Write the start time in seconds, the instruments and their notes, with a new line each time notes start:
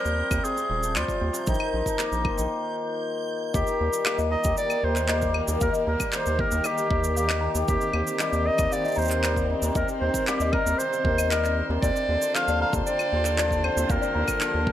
Already playing: hammered dulcimer C3 F3 G3 C4, clarinet A#4, synth texture G6
0.05 analog synth bass D#2, cabasa
0.18 hammered dulcimer C4
0.31 analog synth bass D#2, hammered dulcimer C3, kick, cabasa, claves
0.44 hammered dulcimer C3, clarinet G#4, cabasa
0.57 hammered dulcimer C3, cabasa
0.69 analog synth bass D#1, hammered dulcimer F3
0.83 cabasa
0.95 analog synth bass D#2, hammered dulcimer G3, clarinet F4, clap, cabasa, claves
1.08 kick, cabasa
1.21 analog synth bass D#2, hammered dulcimer C4
1.33 hammered dulcimer C3, cabasa
1.47 analog synth bass A#1, hammered dulcimer D#3, clarinet D#4, kick, cabasa
1.54 cabasa
1.59 hammered dulcimer D#3, claves
1.72 analog synth bass A#1, hammered dulcimer F3
1.86 kick, cabasa
1.98 hammered dulcimer A#3, clap, cabasa
2.12 analog synth bass A#1, cabasa
2.24 hammered dulcimer F4, kick, claves
2.37 analog synth bass A#1, hammered dulcimer D#3, cabasa
3.54 analog synth bass D#2, hammered dulcimer D#3, string quartet D#3, clarinet G4, celesta D#5, kick, cabasa
3.67 hammered dulcimer D#3, string quartet A#3, cabasa
3.72 string quartet G4
3.81 analog synth bass D#2, hammered dulcimer G3
3.93 string quartet A#4, cabasa
4.06 hammered dulcimer A#3, clarinet G4, celesta F5, clap, cabasa, claves
4.18 analog synth bass D#2, celesta D#5, cabasa
4.31 hammered dulcimer G4, clarinet D#5, celesta A#5
4.44 analog synth bass D#2, hammered dulcimer D#3, kick, cabasa
4.57 hammered dulcimer D#3, clarinet D5, cabasa
4.70 hammered dulcimer D#3, cabasa, claves
4.83 analog synth bass D#2, hammered dulcimer G3, clarinet C5
4.96 clap, cabasa
5.08 hammered dulcimer A#3, celesta D#5, clap, cabasa
5.22 kick, cabasa
5.34 hammered dulcimer G4, claves
5.48 analog synth bass D#2, hammered dulcimer D#3, cabasa
5.61 analog synth bass D#2, hammered dulcimer D#3, clarinet A#4, celesta F5, kick, cabasa
5.73 hammered dulcimer D#3, celesta D#5, cabasa
5.87 analog synth bass D#2, hammered dulcimer G3, clarinet A#4, celesta A#5
6.00 kick, cabasa, claves
6.13 hammered dulcimer A#3, clarinet C5, clap, cabasa
6.26 analog synth bass D#2, cabasa
6.39 hammered dulcimer G4, clarinet A#4, kick
6.51 analog synth bass D#2, hammered dulcimer D#3, cabasa
6.64 hammered dulcimer D#3, clarinet G4, celesta D#5, cabasa, claves
6.78 hammered dulcimer D#3, cabasa
6.91 analog synth bass D#2, hammered dulcimer G3, kick
7.04 cabasa
7.16 hammered dulcimer A#3, clarinet G4, celesta F5, cabasa
7.28 celesta D#5, clap, cabasa, claves
7.41 hammered dulcimer G4, celesta A#5
7.55 analog synth bass D#2, hammered dulcimer D#3, cabasa
7.68 analog synth bass D#2, hammered dulcimer C3, clarinet G4, kick, cabasa
7.81 hammered dulcimer C3, cabasa
7.93 analog synth bass D#2, hammered dulcimer D#3, string quartet C4 C5, claves
8.07 cabasa
8.19 hammered dulcimer G3, clarinet G4, celesta D#5, clap, cabasa
8.33 analog synth bass D#2, cabasa
8.47 hammered dulcimer D#4, clarinet D#5
8.58 analog synth bass D#2, hammered dulcimer C3, kick, cabasa, claves
8.72 hammered dulcimer C3, clarinet D5, celesta F5, cabasa
8.85 hammered dulcimer C3, celesta D#5, cabasa
8.88 cabasa
8.92 cabasa
8.95 analog synth bass D#2, hammered dulcimer D#3, celesta A#5, cabasa
8.98 clarinet C5, cabasa
9.02 cabasa
9.05 cabasa
9.08 clap, cabasa
9.11 cabasa
9.24 hammered dulcimer G3, clap, cabasa, claves
9.36 kick, cabasa
9.50 hammered dulcimer D#4
9.62 analog synth bass D#2, hammered dulcimer C3, cabasa
9.75 analog synth bass D#2, hammered dulcimer C3, clarinet A#4, celesta D#5, kick, cabasa
9.89 hammered dulcimer C3, cabasa
10.01 analog synth bass D#2, hammered dulcimer D#3, clarinet C5
10.14 kick, cabasa
10.27 hammered dulcimer G3, clarinet G4, clap, cabasa
10.40 analog synth bass D#2, celesta D#5, cabasa
10.53 hammered dulcimer D#4, clarinet A#4, celesta A#5, kick, claves
10.66 analog synth bass D#2, hammered dulcimer C3, cabasa
10.78 hammered dulcimer C3, clarinet C5, cabasa
10.93 hammered dulcimer C3, cabasa
11.04 analog synth bass D#2, hammered dulcimer D#3, celesta A#4, kick
11.18 celesta D#5, cabasa, claves
11.30 hammered dulcimer G3, clarinet A#4, celesta D#5, clap, cabasa
11.45 clap, cabasa
11.58 hammered dulcimer D#4
11.70 analog synth bass D#2, hammered dulcimer C3
11.82 analog synth bass D#2, hammered dulcimer C3, string quartet D3, clarinet D5, celesta D5, kick, cabasa
11.96 hammered dulcimer C3, cabasa
12.09 analog synth bass D#2, hammered dulcimer D3, string quartet F4
12.22 string quartet A#3, cabasa
12.34 hammered dulcimer F3, clarinet F5, celesta F5, clap, cabasa, claves
12.48 analog synth bass D#2, celesta D5, cabasa
12.60 hammered dulcimer C4, clarinet F5, celesta A#5
12.73 analog synth bass D#2, hammered dulcimer C3, kick, cabasa
12.86 hammered dulcimer C3, clarinet D5, cabasa
12.99 hammered dulcimer C3, cabasa, claves
13.12 analog synth bass D#2, hammered dulcimer D3
13.25 clap, cabasa
13.38 hammered dulcimer F3, celesta D5, clap, cabasa
13.51 kick, cabasa
13.64 hammered dulcimer C4, clarinet C5, claves
13.77 analog synth bass D#2, hammered dulcimer C3, cabasa
13.90 analog synth bass D#2, hammered dulcimer C3, clarinet A#4, celesta F5, kick, cabasa
14.02 hammered dulcimer C3, celesta D5, cabasa
14.15 analog synth bass D#2, hammered dulcimer D3, celesta A#5
14.28 kick, cabasa, claves
14.41 hammered dulcimer F3, clap, cabasa
14.54 analog synth bass D#2
14.67 hammered dulcimer C4, kick